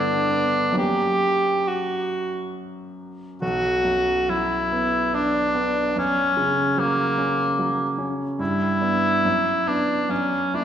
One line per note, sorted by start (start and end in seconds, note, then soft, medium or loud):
0.00 0.74 G2 medium
0.00 0.79 D3 medium
0.00 0.79 G3 soft
0.00 0.31 B3 soft
0.00 0.77 D4 medium
0.31 0.77 B3 soft
0.72 3.36 F#2 medium
0.72 3.36 F#3 soft
0.72 3.37 A#3 soft
0.72 3.37 C#4 soft
0.78 1.69 G4 medium
1.68 2.55 F#4 medium
3.42 5.93 B1 soft
3.42 4.31 F#4 medium
3.85 4.55 F#2 soft
4.29 4.98 F#3 soft
4.29 5.16 E4 medium
4.72 5.39 B3 soft
5.14 5.80 D4 soft
5.14 5.97 D4 medium
5.55 5.96 B3 soft
5.96 8.35 F#2 soft
5.96 6.81 C#4 medium
6.37 7.01 C#3 soft
6.77 7.42 F#3 soft
6.77 8.00 A#3 medium
7.18 7.83 C#4 soft
7.59 8.24 F#3 soft
7.98 8.40 C#4 soft
8.39 9.21 G2 medium
8.39 9.69 E4 medium
8.81 9.20 B3 soft
8.81 9.20 D4 soft
9.25 10.08 F#2 soft
9.67 10.06 B3 soft
9.67 10.06 D4 soft
9.67 10.12 D4 medium
10.09 10.64 F#2 soft
10.09 10.57 C#4 medium
10.54 10.64 A#3 soft
10.54 10.64 D4 medium
10.54 10.64 E4 soft